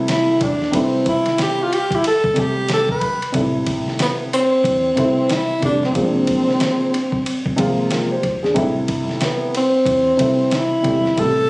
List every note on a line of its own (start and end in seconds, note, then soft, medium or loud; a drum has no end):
0.00 0.45 C3 medium
0.00 0.45 G3 medium
0.00 0.46 A3 medium
0.00 0.46 B3 medium
0.00 0.47 E4 medium
0.08 0.44 E4 medium
0.08 snare loud
0.08 hi-hat pedal medium
0.08 ride medium
0.41 0.66 E1 loud
0.41 0.77 D4 medium
0.41 kick medium
0.41 ride medium
0.62 snare soft
0.71 1.66 C3 medium
0.71 1.67 G3 medium
0.71 1.67 A3 medium
0.71 1.68 B4 medium
0.71 kick loud
0.71 ride medium
0.76 1.07 C4 medium
0.76 1.68 E4 medium
1.06 1.38 E4 loud
1.06 kick medium
1.06 ride medium
1.26 snare soft
1.26 ride soft
1.38 1.64 G4 loud
1.38 snare loud
1.38 hi-hat pedal medium
1.38 ride medium
1.63 1.75 F4 medium
1.73 1.97 G4 loud
1.73 ride medium
1.91 kick medium
1.91 ride soft
1.95 2.06 E4 medium
2.04 2.41 A4 loud
2.04 ride medium
2.24 kick loud
2.34 3.06 C3 medium
2.34 3.06 G3 medium
2.34 3.07 A3 medium
2.34 3.07 B3 medium
2.34 kick medium
2.34 ride medium
2.38 3.08 G4 medium
2.38 2.71 G4 loud
2.69 snare loud
2.69 hi-hat pedal medium
2.69 ride medium
2.73 2.90 A4 loud
2.89 3.33 B4 loud
2.89 kick loud
3.01 kick medium
3.01 ride medium
3.22 ride soft
3.32 3.85 A1 medium
3.32 4.27 C3 medium
3.32 4.28 G3 medium
3.32 4.28 A3 medium
3.32 4.28 B3 medium
3.32 4.29 E4 medium
3.32 kick loud
3.32 ride medium
3.67 kick medium
3.67 ride medium
3.88 snare soft
3.99 4.16 B3 medium
3.99 snare loud
3.99 hi-hat pedal soft
3.99 ride medium
4.33 5.33 C4 loud
4.33 ride medium
4.64 4.90 E2 medium
4.64 kick medium
4.64 ride medium
4.95 5.46 C3 medium
4.95 5.46 G3 medium
4.95 5.47 A3 medium
4.95 5.47 E4 medium
4.95 5.47 B4 medium
4.95 kick medium
4.95 ride medium
5.29 5.63 E4 loud
5.29 snare loud
5.29 hi-hat pedal medium
5.29 ride medium
5.60 5.96 F1 medium
5.60 5.87 C3 medium
5.60 5.87 G3 medium
5.60 5.88 A3 medium
5.60 5.88 B3 medium
5.60 5.82 D4 medium
5.60 kick medium
5.60 ride medium
5.64 5.89 G4 medium
5.83 7.76 C4 medium
5.83 snare soft
5.93 6.46 A#1 loud
5.93 6.88 C3 medium
5.93 6.88 F3 medium
5.93 6.89 G#3 medium
5.93 6.89 A#3 medium
5.93 kick loud
5.93 ride medium
5.97 6.04 C4 medium
6.03 6.93 D4 medium
6.27 kick medium
6.27 ride medium
6.49 snare soft
6.60 snare loud
6.60 hi-hat pedal medium
6.60 ride medium
6.94 ride medium
7.12 kick medium
7.26 ride medium
7.46 kick medium
7.56 7.84 G#1 medium
7.56 8.07 C3 medium
7.56 8.07 F3 medium
7.56 8.08 G#3 medium
7.56 8.08 A#3 medium
7.56 7.90 F4 medium
7.56 kick medium
7.56 ride medium
7.91 8.10 F4 medium
7.91 8.10 A#4 medium
7.91 snare loud
7.91 hi-hat pedal medium
7.91 ride medium
8.11 8.43 G4 medium
8.11 8.42 C5 medium
8.23 8.56 E1 medium
8.23 kick medium
8.23 ride medium
8.43 8.75 D4 medium
8.43 8.74 G#4 medium
8.43 snare soft
8.54 9.07 A1 loud
8.54 9.49 C3 medium
8.54 9.49 G3 medium
8.54 9.50 A3 medium
8.54 9.51 B3 medium
8.54 9.51 E4 medium
8.54 kick loud
8.54 ride medium
8.88 kick medium
8.88 ride medium
9.09 snare soft
9.21 9.53 B3 medium
9.21 snare loud
9.21 hi-hat pedal medium
9.21 ride medium
9.55 10.57 C4 medium
9.55 ride medium
9.86 10.11 E2 medium
9.86 kick medium
9.86 ride medium
10.17 10.67 C3 medium
10.17 10.68 G3 medium
10.17 10.69 A3 medium
10.17 10.69 E4 medium
10.17 10.69 B4 medium
10.17 kick medium
10.17 ride medium
10.51 snare loud
10.51 hi-hat pedal medium
10.51 ride medium
10.56 11.21 E4 medium
10.82 11.10 E1 medium
10.82 11.09 C3 medium
10.82 11.09 G3 medium
10.82 11.10 A3 medium
10.82 11.10 B3 medium
10.82 kick medium
10.82 ride medium
10.86 11.11 G4 medium
11.05 snare soft
11.16 11.50 A1 medium
11.16 11.24 B2 medium
11.16 11.50 G3 medium
11.16 11.50 A3 medium
11.16 11.50 B3 medium
11.16 kick loud
11.16 ride medium
11.20 11.50 C3 medium
11.20 11.50 G4 medium
11.20 11.50 A4 loud